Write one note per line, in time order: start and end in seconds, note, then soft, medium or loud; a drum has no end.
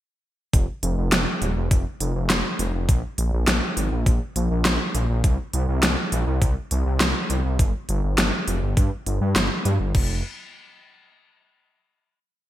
0.53 0.67 F1 loud
0.53 kick loud
0.53 closed hi-hat medium
0.83 0.96 F1 medium
0.83 closed hi-hat medium
0.98 1.11 F1 medium
1.12 1.25 F1 medium
1.12 snare loud
1.12 closed hi-hat loud
1.42 1.55 D#1 medium
1.42 closed hi-hat medium
1.56 1.70 F1 medium
1.71 1.84 F1 loud
1.71 kick loud
1.71 closed hi-hat medium
2.00 2.14 F1 loud
2.00 closed hi-hat medium
2.15 2.28 F1 medium
2.30 2.43 F1 medium
2.30 snare loud
2.30 closed hi-hat medium
2.59 2.73 F1 medium
2.59 closed hi-hat medium
2.74 2.87 F1 medium
2.89 3.02 A#1 loud
2.89 kick loud
2.89 closed hi-hat loud
3.18 3.31 A#1 medium
3.18 closed hi-hat medium
3.33 3.46 A#1 medium
3.48 3.61 A#1 loud
3.48 snare loud
3.48 closed hi-hat loud
3.77 3.90 G#1 medium
3.77 closed hi-hat medium
3.92 4.05 A#1 medium
4.06 4.19 A#1 medium
4.06 kick loud
4.06 closed hi-hat medium
4.36 4.49 A#1 loud
4.36 closed hi-hat medium
4.51 4.64 A#1 medium
4.65 4.78 A#1 medium
4.65 snare loud
4.65 closed hi-hat medium
4.95 5.08 A#1 medium
4.95 closed hi-hat medium
5.10 5.23 A#1 medium
5.24 5.37 C2 loud
5.24 kick loud
5.24 closed hi-hat loud
5.53 5.67 C2 medium
5.53 closed hi-hat medium
5.68 5.81 C2 medium
5.83 5.96 C2 loud
5.83 snare loud
5.83 closed hi-hat loud
6.12 6.25 A#1 medium
6.12 closed hi-hat medium
6.27 6.40 C2 medium
6.42 6.55 C2 loud
6.42 kick loud
6.42 closed hi-hat medium
6.71 6.84 C2 loud
6.71 closed hi-hat medium
6.86 6.99 C2 medium
7.00 7.14 C2 medium
7.00 snare loud
7.00 closed hi-hat medium
7.30 7.43 C2 medium
7.30 closed hi-hat medium
7.45 7.58 C2 medium
7.59 7.72 G1 loud
7.59 kick loud
7.59 closed hi-hat medium
7.89 8.02 G1 loud
7.89 closed hi-hat medium
8.04 8.17 G1 medium
8.18 8.31 G1 loud
8.18 snare loud
8.18 closed hi-hat medium
8.48 8.61 F1 medium
8.48 closed hi-hat medium
8.62 8.76 G1 medium
8.77 8.90 G2 loud
8.77 kick loud
8.77 closed hi-hat medium
9.06 9.20 G1 loud
9.06 closed hi-hat medium
9.21 9.34 G2 medium
9.36 9.49 G1 medium
9.36 snare loud
9.36 closed hi-hat medium
9.65 9.78 G2 loud
9.65 closed hi-hat medium
9.80 9.93 G1 medium
9.95 10.22 F1 loud
9.95 kick loud
9.95 crash medium